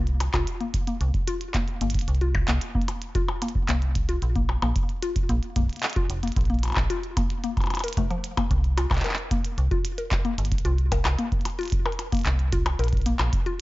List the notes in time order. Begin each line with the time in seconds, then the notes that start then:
Already playing: C2
0.07 closed hi-hat
0.20 closed hi-hat, percussion blips
0.34 C2 F4, kick, clap, closed hi-hat, percussion blips
0.47 closed hi-hat
0.61 A#3, closed hi-hat
0.74 kick, closed hi-hat
0.87 A#3, closed hi-hat
1.01 C2, closed hi-hat
1.14 kick, closed hi-hat
1.28 F4, closed hi-hat
1.41 closed hi-hat
1.54 A#3, kick, clap, closed hi-hat
1.68 closed hi-hat
1.81 G1 A#3, closed hi-hat
1.90 closed hi-hat
1.94 kick, closed hi-hat
1.99 closed hi-hat
2.01 closed hi-hat
2.08 C2, closed hi-hat
2.15 closed hi-hat
2.21 F4, closed hi-hat
2.35 kick, percussion blips
2.48 C2 A#3, clap, closed hi-hat
2.61 closed hi-hat
2.75 A#3, kick
2.82 closed hi-hat
2.88 closed hi-hat, percussion blips
3.02 closed hi-hat
3.15 F4, kick, closed hi-hat
3.28 percussion blips
3.42 A#3, closed hi-hat, percussion blips
3.48 closed hi-hat
3.55 kick
3.69 C2 A#3, clap, closed hi-hat
3.82 closed hi-hat
3.95 kick, closed hi-hat
4.09 F4, closed hi-hat
4.22 A#1, closed hi-hat
4.36 A#3, kick, closed hi-hat
4.49 percussion blips
4.62 A#1 A#3, closed hi-hat, percussion blips
4.76 kick, closed hi-hat
4.89 closed hi-hat
5.03 F4, closed hi-hat
5.16 kick, closed hi-hat
5.29 A#1 A#3, closed hi-hat
5.43 closed hi-hat
5.56 A#3, kick, closed hi-hat
5.59 kick
5.63 kick
5.66 kick, closed hi-hat
5.73 closed hi-hat
5.76 closed hi-hat
5.80 clap, closed hi-hat
5.83 closed hi-hat
5.86 closed hi-hat
5.90 closed hi-hat
5.93 F4, closed hi-hat
5.96 kick, closed hi-hat
6.10 F1, closed hi-hat
6.23 A#3, closed hi-hat
6.28 closed hi-hat
6.32 closed hi-hat
6.36 A#1, kick, closed hi-hat
6.41 closed hi-hat
6.45 closed hi-hat
6.50 A#3, closed hi-hat
6.54 closed hi-hat
6.59 closed hi-hat
6.63 closed hi-hat, percussion blips
6.65 closed hi-hat, percussion blips
6.68 percussion blips
6.70 closed hi-hat, percussion blips
6.72 percussion blips
6.74 clap, percussion blips
6.77 A#1, kick, percussion blips
6.90 F4, closed hi-hat
7.03 closed hi-hat
7.17 A#3, kick, closed hi-hat, percussion blips
7.30 closed hi-hat
7.44 A#3, closed hi-hat
7.57 kick, closed hi-hat, percussion blips
7.60 closed hi-hat, percussion blips
7.64 closed hi-hat, percussion blips
7.67 closed hi-hat, percussion blips
7.70 percussion blips
7.74 closed hi-hat, percussion blips
7.77 closed hi-hat, percussion blips
7.80 A#4, closed hi-hat, percussion blips
7.88 closed hi-hat
7.93 closed hi-hat
7.97 F1 A3, kick, closed hi-hat
8.10 F3, closed hi-hat
8.24 closed hi-hat
8.37 A#3, kick, closed hi-hat, percussion blips
8.51 C2, kick, closed hi-hat
8.64 closed hi-hat
8.77 F4, closed hi-hat, percussion blips
8.91 C2, kick, clap, closed hi-hat, percussion blips
8.94 clap, closed hi-hat
8.98 clap, closed hi-hat
9.01 A#4, clap, closed hi-hat
9.04 closed hi-hat
9.09 clap
9.13 clap
9.18 closed hi-hat
9.31 A#3, kick, closed hi-hat
9.45 closed hi-hat
9.58 C2, closed hi-hat
9.71 F4, kick, closed hi-hat
9.85 closed hi-hat
9.98 A#4, closed hi-hat
10.11 kick, clap, closed hi-hat
10.25 A#3, closed hi-hat
10.38 G1, closed hi-hat
10.45 closed hi-hat
10.52 kick, closed hi-hat
10.58 closed hi-hat
10.65 C2 F4, closed hi-hat
10.78 closed hi-hat
10.92 A#4, kick, closed hi-hat, percussion blips
11.05 C2, clap, closed hi-hat, percussion blips
11.19 A#3, closed hi-hat
11.32 kick, closed hi-hat
11.41 closed hi-hat
11.45 closed hi-hat, percussion blips
11.50 closed hi-hat
11.59 F4, closed hi-hat
11.61 closed hi-hat
11.63 closed hi-hat
11.65 closed hi-hat
11.68 closed hi-hat
11.70 kick, closed hi-hat
11.72 closed hi-hat
11.86 A#4, percussion blips
11.92 closed hi-hat
11.99 closed hi-hat, percussion blips
12.12 A#3, kick, closed hi-hat
12.15 closed hi-hat
12.17 closed hi-hat
12.19 closed hi-hat
12.21 closed hi-hat
12.24 C2, clap, closed hi-hat
12.26 closed hi-hat
12.39 closed hi-hat
12.52 F4, kick, closed hi-hat
12.66 closed hi-hat, percussion blips
12.79 A#1 A#4, closed hi-hat
12.84 closed hi-hat
12.88 closed hi-hat
12.93 kick, closed hi-hat
12.97 closed hi-hat
13.02 closed hi-hat
13.06 A#3, closed hi-hat
13.19 A#1, clap, closed hi-hat, percussion blips
13.33 kick, closed hi-hat
13.46 F4, closed hi-hat